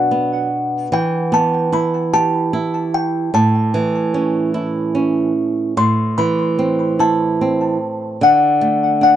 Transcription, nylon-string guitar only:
0.00 0.88 B2 medium
0.00 0.47 F#3 soft
0.00 0.10 B3 soft
0.00 0.88 D4 soft
0.11 0.89 B3 soft
0.92 3.29 E3 medium
1.32 2.89 B3 soft
1.72 2.52 E4 soft
2.13 3.30 G4 soft
2.53 3.31 E4 soft
3.34 5.73 A2 medium
3.74 5.32 E3 soft
4.14 4.93 C#4 soft
4.54 5.73 E4 soft
4.95 5.74 C#4 soft
5.77 8.17 A2 medium
6.18 7.77 E3 soft
6.59 7.40 C4 soft
6.99 8.17 E4 soft
7.41 8.19 C4 soft
8.21 9.16 D3 medium
8.61 9.16 A3 soft
9.01 9.16 D4 soft

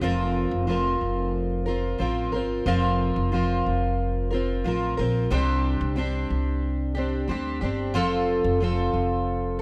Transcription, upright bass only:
0.01 0.48 F1 medium
0.51 0.97 F1 medium
1.01 1.97 F1 medium
2.00 2.33 A1 medium
2.33 2.64 G1 medium
2.66 3.12 F1 loud
3.16 3.62 F1 medium
3.66 4.61 F1 medium
4.65 4.96 A1 medium
4.99 5.29 A#1 medium
5.31 5.77 C2 loud
5.81 6.26 C2 medium
6.30 7.25 C2 medium
7.29 7.59 D2 medium
7.62 7.95 G1 medium
7.95 8.41 F1 loud
8.44 8.90 F1 medium
8.94 9.62 F1 medium

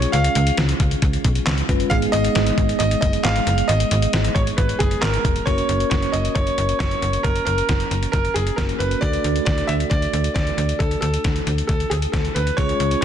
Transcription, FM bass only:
0.13 0.29 C#2 loud
0.36 0.51 C#2 loud
0.58 0.73 C#2 loud
0.80 0.96 C#2 loud
1.02 1.18 C#2 loud
1.25 1.40 B1 loud
1.47 1.62 C#2 medium
1.69 1.85 F#1 medium
1.91 2.07 G#1 loud
2.13 2.29 G#1 loud
2.36 2.51 G#1 loud
2.58 2.73 G#1 loud
2.80 2.96 G#1 loud
3.02 3.18 F#1 loud
3.25 3.40 G#1 loud
3.47 3.62 F#1 loud
3.69 3.85 G#1 loud
3.91 4.07 G#1 loud
4.14 4.29 G#1 loud
4.36 4.51 G#1 loud
4.58 4.74 G#1 loud
4.80 4.96 F#1 loud
5.02 5.18 G#1 loud
5.25 5.40 F1 medium
5.47 5.62 F#1 loud
5.69 5.85 F#1 loud
5.91 6.07 F#1 loud
6.14 6.29 F#1 medium
6.36 6.51 F#1 loud
6.58 6.74 F#1 loud
6.80 6.96 F#1 loud
7.02 7.18 F#1 loud
7.25 7.40 F#1 loud
7.47 7.62 F#1 loud
7.69 7.85 F#1 loud
7.91 8.07 F#1 loud
8.13 8.29 F#1 loud
8.36 8.51 F#1 loud
8.58 8.73 F#1 loud
8.80 8.96 F#1 loud
9.02 9.18 D2 loud
9.24 9.40 D2 loud
9.47 9.62 D2 loud
9.69 9.84 D2 loud
9.91 10.07 D2 loud
10.13 10.29 D2 loud
10.36 10.51 D2 loud
10.58 10.73 D2 loud
10.80 10.96 D2 loud
11.02 11.18 D2 loud
11.25 11.40 D2 loud
11.47 11.62 D2 loud
11.69 11.85 D2 loud
11.91 12.07 D2 medium
12.14 12.29 D2 loud
12.36 12.51 D2 loud
12.58 12.73 C#2 loud
12.80 12.96 C#2 loud

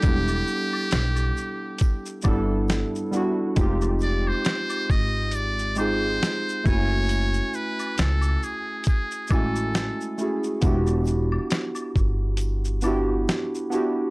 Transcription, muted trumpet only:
0.00 2.22 G4 loud
4.02 4.29 D5 loud
4.28 4.92 C5 loud
4.91 5.37 D#5 loud
5.35 5.78 D5 loud
5.79 6.68 C5 loud
6.66 7.57 C#5 loud
7.55 8.01 B4 medium
7.99 8.45 A4 medium
8.44 8.87 G#4 medium
8.88 9.33 G#4 medium
9.32 10.19 A4 medium

